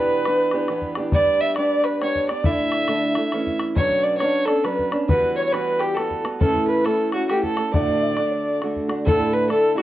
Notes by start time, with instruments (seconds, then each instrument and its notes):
Already playing: steel-string acoustic guitar E2 B2 E3 B3 D4 G4, fiddle B4, alto flute B4
0.25 steel-string acoustic guitar E3 B3 D4 G4, bodhran
0.52 steel-string acoustic guitar B3 D4 G4, bodhran
0.56 steel-string acoustic guitar E3
0.69 steel-string acoustic guitar E3 B3 D4 G4, bodhran
0.82 bodhran
0.96 steel-string acoustic guitar B3 D4 G4, bodhran
1.00 steel-string acoustic guitar E3
1.13 steel-string acoustic guitar G3 B3 D4 G4, fiddle D5, alto flute D5, bodhran
1.26 bodhran
1.41 fiddle E5, alto flute E5
1.56 steel-string acoustic guitar G3 B3 D4 G4, fiddle D5, alto flute D5, bodhran
1.84 fiddle B4, alto flute B4, bodhran
2.02 steel-string acoustic guitar G3 B3 D4 G4, alto flute C#5, fiddle C#5, bodhran
2.16 bodhran
2.29 steel-string acoustic guitar B3 D4 G4, fiddle D5, alto flute D5, bodhran
2.44 steel-string acoustic guitar A2 D3 A3 D4 E4, alto flute E5, fiddle E5, bodhran
2.59 bodhran
2.72 bodhran
2.88 steel-string acoustic guitar D3 A3 D4 E4, bodhran
3.15 steel-string acoustic guitar A3 D4 E4, bodhran
3.32 steel-string acoustic guitar E3 A3 C#4 E4, bodhran
3.47 bodhran
3.60 bodhran
3.76 steel-string acoustic guitar B2 F#3 B3 C#4 D4, fiddle C#5, alto flute C#5, bodhran
3.91 bodhran
4.03 fiddle D5, alto flute D5
4.18 steel-string acoustic guitar F#3 B3, fiddle C#5, alto flute C#5, bodhran
4.23 steel-string acoustic guitar C#4 D4
4.46 steel-string acoustic guitar B3 C#4 D4, fiddle A4, alto flute A4, bodhran
4.64 steel-string acoustic guitar F#3 B3 C#4 D4, fiddle B4, alto flute B4, bodhran
4.79 bodhran
4.92 steel-string acoustic guitar B3 C#4 D4, bodhran
5.09 steel-string acoustic guitar E3 G3 B3 F#4, fiddle B4, alto flute B4, bodhran
5.23 bodhran
5.36 fiddle C#5, alto flute C#5
5.44 fiddle C#5, alto flute C#5
5.52 steel-string acoustic guitar E3 G3 B3 F#4, fiddle B4, alto flute B4, bodhran
5.79 fiddle G4, alto flute G4, bodhran
5.95 steel-string acoustic guitar E3 G3 B3 F#4, fiddle A4, alto flute A4, bodhran
6.11 bodhran
6.24 steel-string acoustic guitar G3 B3 F#4, bodhran
6.40 steel-string acoustic guitar A2 E3 A3 C#4 E4, fiddle A4, alto flute A4, bodhran
6.55 bodhran
6.68 fiddle B4, alto flute B4
6.85 steel-string acoustic guitar E3 A3 C#4 E4, fiddle A4, alto flute A4, bodhran
7.12 steel-string acoustic guitar A3 C#4 E4, fiddle F#4, alto flute F#4, bodhran
7.27 steel-string acoustic guitar E3 A3 C#4, fiddle F#4 G4, alto flute G4, bodhran
7.32 steel-string acoustic guitar E4
7.43 fiddle A4, alto flute A4, bodhran
7.56 steel-string acoustic guitar A3 C#4 E4, bodhran
7.73 steel-string acoustic guitar D2 A2 D3 A3 D4 F#4, fiddle D5, alto flute D5, bodhran
7.88 bodhran
8.03 alto flute E5
8.17 steel-string acoustic guitar D3 A3 D4 F#4, bodhran
8.31 alto flute C#5 D5
8.62 steel-string acoustic guitar D3 A3 D4 F#4, bodhran
8.76 bodhran
8.88 steel-string acoustic guitar D3 A3 D4 F#4, bodhran
9.05 steel-string acoustic guitar D2 A2 D3 A3 D4 E4, fiddle A4, alto flute A4, bodhran
9.20 bodhran
9.33 fiddle B4, alto flute B4
9.48 steel-string acoustic guitar D3 A3 D4 E4, fiddle A4, alto flute A4, bodhran
9.75 steel-string acoustic guitar D3 A3 D4 E4, alto flute F#4, fiddle F#4, bodhran